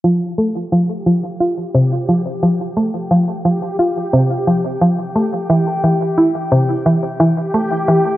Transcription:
<<
  \new Staff \with { instrumentName = "Synth texture" } { \time 4/4 \key f \major \tempo 4 = 88 <g' g''>1~ | <g' g''>1~ | <g' g''>1 | }
  \new Staff \with { instrumentName = "Synth arpeggio sound" } { \clef bass \time 4/4 \key f \major f8 a8 f8 f16 r16 f'16 r16 c8 f16 r16 f8 | a8 f8 f16 r16 f'16 r16 c8 f16 r16 f8 a8 | e8 e16 r16 e'16 r16 c8 e16 r16 e8 a8 e8 | }
>>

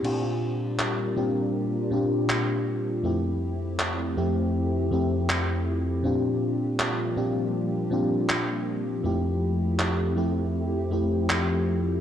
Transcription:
<<
  \new Staff \with { instrumentName = "FM electric piano" } { \time 4/4 \key bes \lydian \tempo 4 = 80 <bes, c' d' f' g'>4. <bes, c' d' f' g'>4 <bes, c' d' f' g'>4. | <f, a c' e' g'>4. <f, a c' e' g'>4 <f, a c' e' g'>4. | <bes, c' d' f' g'>4. <bes, c' d' f' g'>4 <bes, c' d' f' g'>4. | <f, a c' e' g'>4. <f, a c' e' g'>4 <f, a c' e' g'>4. | }
  \new Staff \with { instrumentName = "String machine" } { \time 4/4 \key bes \lydian << { <bes d' f' bes'>1 | <a c' e' g'>1 | <g bes d' g'>1 | <a c' e' g'>1 | } \\ { g1 | f1~ | f1~ | f1 | } >> }
  \new DrumStaff \with { instrumentName = "Drums" } \drummode { \time 4/4 cymc4 hc4 r4 hc4 | r4 hc4 r4 hc4 | r4 hc4 r4 hc4 | r4 hc4 r4 hc4 | }
>>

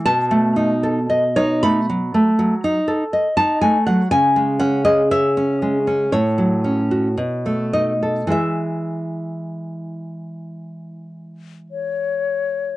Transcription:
<<
  \new Staff \with { instrumentName = "Flute" } { \time 4/4 \key e \major \tempo 4 = 56 r1 | r1 | r2. cis''4 | }
  \new Staff \with { instrumentName = "Nylon-string guitar" } { \time 4/4 \key e \major << { a''4~ a''16 cis''16 b''4.~ b''16 a''16 gis''16 fis''16 | gis''8 fis''16 dis''16 e''4 cis''4. dis''8 | e''2. r4 | } \\ { b,16 a16 dis'16 a'16 dis''16 dis'16 a16 fis16 a16 fis16 dis'16 a'16 dis''16 dis'16 a16 fis16 | cis16 gis16 cis'16 gis'16 cis''16 cis'16 gis16 cis'16 a,16 fis16 cis'16 fis'16 b,16 a16 dis'16 a'16 | <e gis e'>1 | } >> }
>>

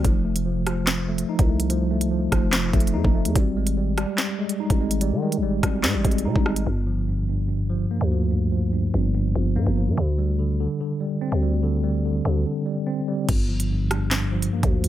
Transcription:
<<
  \new Staff \with { instrumentName = "Tine electric piano" } { \clef bass \time 4/4 \key g \minor \tempo 4 = 145 f8 a8 f8 f8 f8 a8 ees'8 a8 | f8 a8 f8 f8 f8 a8 ees'8 a8 | g8 aes8 g8 g8 g8 aes8 ees'8 aes8 | g8 aes8 g8 g8 g8 aes8 ees'8 aes8 |
g,8 f8 g,8 g,8 g,8 f8 bes8 f8 | g,8 f8 g,8 g,8 g,8 f8 bes8 f8 | d8 g8 d8 d8 d8 g8 c'8 g8 | d8 g8 d8 d8 d8 g8 c'8 g8 |
g,8 f8 g,8 g,8 g,8 f8 bes8 f8 | }
  \new Staff \with { instrumentName = "808-style bass" } { \clef bass \time 4/4 \key g \minor f,,2. r16 c,8.~ | c,4. f,,4 f,,8 f,16 f,,8 f,16 | aes,,4.~ aes,,16 r4. aes,,8.~ | aes,,16 ees8~ ees32 aes,,8~ aes,,32 aes,,8 aes,16 aes,,16 aes,,8 c16 aes,,8. |
g,,2. r16 d,8.~ | d,4. g,,4 g,,8 g,16 g,,8 g,16 | d,4.~ d,16 r4. d,8.~ | d,4. d,8 r2 |
g,,2. r16 d,8. | }
  \new DrumStaff \with { instrumentName = "Drums" } \drummode { \time 4/4 <hh bd>8. hh16 r8 <hh ss>8 <hc hh sn>8. hh16 r16 <hh bd>8 hh16 | hh8. hh16 r8 <hh bd ss>8 \tuplet 3/2 { <hc hh sn>16 r16 r16 <hh bd>16 hh16 hh16 } r16 bd8 hh16 | <hh bd>8. hh16 r8 <hh ss>8 <hc hh sn>8. hh16 r16 <hh bd>8 hh16 | hh8. hh16 r8 <hh bd ss>8 \tuplet 3/2 { <hc hh sn>16 r16 r16 <hh bd>16 hh16 hh16 } r16 bd16 ss16 hh16 |
r4 r4 r4 r4 | r4 r4 r4 r4 | r4 r4 r4 r4 | r4 r4 r4 r4 |
<cymc hh bd>8. hh16 r8 <hh ss>8 <hc hh sn>8. hh16 r16 <hh bd>8 hh16 | }
>>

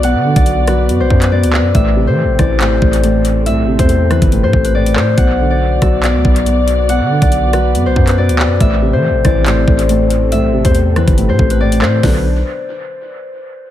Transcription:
<<
  \new Staff \with { instrumentName = "Harp" } { \time 4/4 \key b \phrygian \tempo 4 = 140 fis''8. d''16 r8 b'8. c''8 b'16 d''8 b'8 | e''8. c''16 r8 d''8 c''2 | e''8. c''16 r8 b'8. c''8 b'16 d''8 c''8 | fis''8. d''16 r8 e''8 d''2 |
fis''8. d''16 r8 b'8. c''8 b'16 d''8 b'8 | e''8. c''16 r8 d''8 c''2 | e''8. c''16 r8 b'8. c''8 b'16 d''8 c''8 | b'8 r2. r8 | }
  \new Staff \with { instrumentName = "String section" } { \time 4/4 \key b \phrygian <b fis' d''>1 | <c' a'>1~ | <c' a'>1 | <b fis' d''>1~ |
<b fis' d''>1 | <c' a'>1~ | <c' a'>1 | <b, fis d'>8 r2. r8 | }
  \new Staff \with { instrumentName = "Felt piano" } { \clef bass \time 4/4 \key b \phrygian <b, b>8 d4 fis8 b,8 b8 b,4 | a,8 c4 e8 a,8 a8 a,4 | a,8 c4 e8 a,8 a8 a,4 | b,8 d4 fis8 b,8 b8 b,4 |
b,8 d4 fis8 b,8 b8 b,4 | a,8 c4 e8 a,8 a8 a,4 | a,8 c4 e8 a,8 a8 a,4 | <d fis b d'>8 r2. r8 | }
  \new Staff \with { instrumentName = "808-style bass" } { \clef bass \time 4/4 \key b \phrygian b,,16 d8 b,,4~ b,,16 fis,16 b,,16 fis,8. d,16. fis,16. | a,,8. e16. a,,16. a,,4 a,,4. | b,,16. a,,16. e,4 g,,8 a,16 a,,4 a,8 | b,,4. b,,8. d,16 b,,4.~ |
b,,16 d8 b,,4~ b,,16 fis,16 b,,16 fis,8. d,16. fis,16. | a,,8. e16. a,,16. a,,4 a,,4. | b,,16. a,,16. e,4 g,,8 a,16 a,,4 a,8 | b,,4 r2. | }
  \new DrumStaff \with { instrumentName = "Drums" } \drummode { \time 4/4 hh8. <hh bd>16 hh8 <hh ss>8 hh8 bd16 <hc hh>16 r16 hh16 hc8 | <hh bd>4 r8 <hh bd ss>8 <hc hh>8 bd16 hh16 hh8 hh8 | hh8. <hh bd>16 hh8 <hh ss>16 <hh bd>16 hh8 bd16 hh16 r16 hh16 <hc ss>8 | <hh bd>4 r8 <hh bd ss>8 <hc hh>8 bd16 hh16 hh8 hh8 |
hh8. <hh bd>16 hh8 <hh ss>8 hh8 bd16 <hc hh>16 r16 hh16 hc8 | <hh bd>4 r8 <hh bd ss>8 <hc hh>8 bd16 hh16 hh8 hh8 | hh8. <hh bd>16 hh8 <hh ss>16 <hh bd>16 hh8 bd16 hh16 r16 hh16 <hc ss>8 | <hho bd sn>4 r4 r4 r4 | }
>>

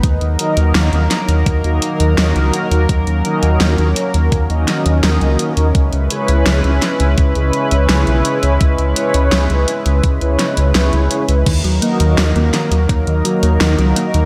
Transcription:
<<
  \new Staff \with { instrumentName = "Analog polysynth" } { \time 4/4 \key ees \phrygian \tempo 4 = 84 r8 <ees ees' ges' bes' ees''>8. <ees ees' ges' bes' ees''>16 r8. <ees ees' ges' bes' ees''>8. <ees ees' ges' bes' ees''>8. <ees ees' ges' bes' ees''>16 | r8 <ees ees' ges' bes' ees''>8. <ees ees' ges' bes' ees''>16 r8. <ees ees' ges' bes' ees''>8. <ees ees' ges' bes' ees''>8. <ees' ges' bes' ees''>16 | r8 <des fes' aes' ces'' des''>8. <des fes' aes' ces'' des''>16 r8. <des fes' aes' ces'' des''>8. <des fes' aes' ces'' des''>8. <des fes' aes' ces'' des''>16 | r8 <des fes' aes' ces'' des''>8. <des fes' aes' ces'' des''>16 r8. <des fes' aes' ces'' des''>8. <des fes' aes' ces'' des''>8. <fes' aes' ces'' des''>16 |
r8 <ees ees' ges' bes' ees''>8. <ees ees' ges' bes' ees''>16 r8. <ees ees' ges' bes' ees''>8. <ees ees' ges' bes' ees''>8. <ees ees' ges' bes' ees''>16 | }
  \new Staff \with { instrumentName = "Analog synth pad" } { \time 4/4 \key ees \phrygian << { <ges bes'>1~ | <ges bes'>1 | <aes fes' ces''>1~ | <aes fes' ces''>1 |
<ges ees' bes'>1 | } \\ { <bes ees'>1 | des'1~ | des'1~ | des'1 |
bes1 | } >> }
  \new Staff \with { instrumentName = "Synth arpeggio sound" } { \clef bass \time 4/4 \key ees \phrygian r1 | r1 | r1 | r1 |
ees16 ges16 bes16 ees16 ges16 bes16 ees16 ges16 bes16 ees16 ges16 bes16 ees16 ges16 bes16 ees16 | }
  \new Staff \with { instrumentName = "Analog synth bass" } { \clef bass \time 4/4 \key ees \phrygian ees,16 ees,16 r16 ees,16 ees,16 ees,16 r16 ees,16 ees,16 ees,16 r16 ees,16 ees,16 des,16 r16 ees,16 | ees,16 ees,16 r16 ees,16 ees,16 ees,16 r16 ees,16 ees,16 ees,16 r16 ees,16 ees,16 des,16 r16 ees,16 | des,16 des,16 r16 des,16 des,16 des,16 r16 des,16 des,16 des,16 r16 des,16 des,16 ces,16 r16 des,16 | des,16 des,16 r16 des,16 des,16 des,16 r16 des,16 des,16 des,16 r16 des,16 des,16 des,16 r16 des,16 |
ees,16 ees,16 r16 ees,16 ees,16 ees,16 r16 ees,16 ees,16 ees,16 r16 ees,16 ees,16 des,16 r16 ees,16 | }
  \new DrumStaff \with { instrumentName = "Drums" } \drummode { \time 4/4 <hh bd>16 hh16 hh16 hh16 <hh sn>16 hh16 <hh sn>16 hh16 <hh bd>16 hh16 hh16 hh16 <hh sn>16 hh16 hh16 hh16 | <hh bd>16 hh16 hh16 hh16 <hh sn>16 hh16 hh16 hh16 <hh bd>16 hh16 <hh sn>16 hh16 <hh sn>16 hh16 hh16 hh16 | <hh bd>16 hh16 hh16 hh16 <hh sn>16 hh16 <hh sn>16 hh16 <hh bd>16 hh16 hh16 hh16 <hh sn>16 hh16 hh16 hh16 | <hh bd>16 hh16 hh16 hh16 <hh sn>16 hh16 hh16 hh16 <hh bd>16 hh16 <hh sn>16 hh16 <hh sn>16 hh16 hh16 hh16 |
<cymc hh bd>16 hh16 hh16 hh16 <hh sn>16 hh16 <hh sn>16 hh16 <hh bd>16 hh16 hh16 hh16 <hh sn>16 hh16 hh16 hh16 | }
>>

